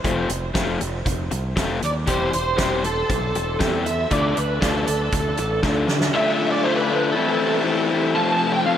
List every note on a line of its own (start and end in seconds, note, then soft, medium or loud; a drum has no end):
0.04 0.26 F1 medium
0.04 0.29 F3 medium
0.04 0.29 A3 medium
0.04 0.29 C4 medium
0.04 0.28 F4 medium
0.04 kick medium
0.04 closed hi-hat medium
0.29 0.52 F1 medium
0.29 muted overdriven electric guitar stroke medium
0.29 closed hi-hat medium
0.54 0.77 F1 medium
0.54 0.80 F3 medium
0.54 0.80 A3 medium
0.54 0.80 C4 medium
0.54 0.79 F4 medium
0.54 kick loud
0.54 snare loud
0.54 closed hi-hat medium
0.80 1.03 F1 medium
0.80 muted overdriven electric guitar stroke soft
0.80 closed hi-hat medium
1.06 1.28 F1 medium
1.06 muted overdriven electric guitar stroke soft
1.06 kick medium
1.06 closed hi-hat medium
1.31 1.53 C2 medium
1.31 muted overdriven electric guitar stroke medium
1.31 closed hi-hat medium
1.56 1.79 F1 medium
1.56 1.80 F3 medium
1.56 1.80 A3 medium
1.56 1.80 C4 medium
1.56 1.80 F4 medium
1.56 kick loud
1.56 snare loud
1.56 closed hi-hat medium
1.81 2.04 D#2 medium
1.81 muted overdriven electric guitar stroke soft
1.81 closed hi-hat medium
1.85 1.92 D5 medium
2.06 2.30 E1 loud
2.06 2.33 E3 medium
2.06 2.31 G3 medium
2.06 2.31 C4 medium
2.06 2.31 G4 loud
2.06 2.33 C5 medium
2.06 kick medium
2.06 closed hi-hat medium
2.32 2.56 E1 medium
2.32 2.81 C5 medium
2.32 muted overdriven electric guitar stroke soft
2.32 closed hi-hat medium
2.57 3.02 E1 medium
2.57 2.84 E3 medium
2.57 2.84 G3 medium
2.57 2.83 C4 medium
2.57 2.83 G4 medium
2.57 kick medium
2.57 snare medium
2.57 closed hi-hat medium
2.84 3.90 A4 medium
2.84 muted overdriven electric guitar stroke soft
2.84 closed hi-hat medium
3.10 3.31 B1 medium
3.10 muted overdriven electric guitar stroke soft
3.10 kick medium
3.10 closed hi-hat medium
3.35 3.57 E1 medium
3.35 muted overdriven electric guitar stroke medium
3.35 closed hi-hat soft
3.59 4.04 E2 medium
3.59 3.86 E3 medium
3.59 3.85 G3 medium
3.59 3.85 C4 medium
3.59 3.85 G4 medium
3.59 kick loud
3.59 snare medium
3.59 closed hi-hat medium
3.86 4.12 E5 medium
3.86 muted overdriven electric guitar stroke soft
3.86 closed hi-hat medium
4.11 4.33 D2 loud
4.11 4.37 D3 medium
4.11 4.36 A3 medium
4.11 4.36 D4 medium
4.11 4.35 F4 medium
4.11 4.38 D5 medium
4.11 kick loud
4.11 closed hi-hat medium
4.36 4.59 D2 medium
4.36 4.60 B4 medium
4.36 muted overdriven electric guitar stroke medium
4.36 closed hi-hat medium
4.61 4.84 D2 medium
4.61 4.87 D3 medium
4.61 4.87 A3 medium
4.61 4.87 D4 medium
4.61 4.86 F4 medium
4.61 4.86 A4 medium
4.61 kick loud
4.61 snare loud
4.61 closed hi-hat medium
4.87 5.10 D2 medium
4.87 5.59 A4 medium
4.87 muted overdriven electric guitar stroke soft
4.87 closed hi-hat medium
5.12 5.34 D2 medium
5.12 muted overdriven electric guitar stroke soft
5.12 kick loud
5.12 closed hi-hat medium
5.37 5.60 A1 medium
5.37 muted overdriven electric guitar stroke medium
5.37 closed hi-hat soft
5.63 5.85 D2 medium
5.63 5.89 D3 medium
5.63 5.88 A3 medium
5.63 5.88 D4 medium
5.63 5.87 F4 medium
5.63 kick medium
5.63 snare medium
5.88 6.10 D3 medium
5.88 muted overdriven electric guitar stroke soft
5.88 snare medium
6.01 snare medium
6.13 6.63 D3 loud
6.13 6.64 A3 loud
6.13 6.64 D4 loud
6.13 6.65 F4 loud
6.13 7.15 F4 medium
6.13 7.14 D5 medium
6.13 6.50 E5 loud
6.13 8.78 A5 medium
6.51 6.65 D5 loud
6.63 7.14 D3 medium
6.63 6.90 A3 loud
6.63 6.89 D4 loud
6.63 6.88 F4 loud
6.63 6.75 C5 loud
6.75 7.11 B4 medium
6.90 7.14 A3 medium
6.90 7.14 D4 medium
6.90 7.14 F4 medium
7.12 7.64 E3 medium
7.12 7.65 A3 medium
7.12 7.85 A4 medium
7.16 8.16 E3 medium
7.16 7.65 C4 medium
7.16 7.66 E4 loud
7.16 8.16 G4 medium
7.16 8.16 C5 medium
7.65 8.15 E3 medium
7.65 7.90 A3 medium
7.65 7.89 C4 medium
7.65 7.89 E4 loud
7.90 8.15 A3 medium
7.90 8.14 C4 medium
7.90 8.14 E4 medium
8.15 8.64 F2 loud
8.15 8.65 C3 loud
8.15 8.65 F3 loud
8.15 8.66 A3 loud
8.15 8.66 C4 loud
8.15 8.78 F4 medium
8.15 8.66 F4 loud
8.15 8.78 E5 medium
8.15 8.51 A5 loud
8.53 8.65 G5 loud
8.66 8.78 F2 medium
8.66 8.78 C3 medium
8.66 8.78 F3 loud
8.66 8.78 A3 medium
8.66 8.78 C4 loud
8.66 8.78 F4 loud
8.66 8.78 F5 medium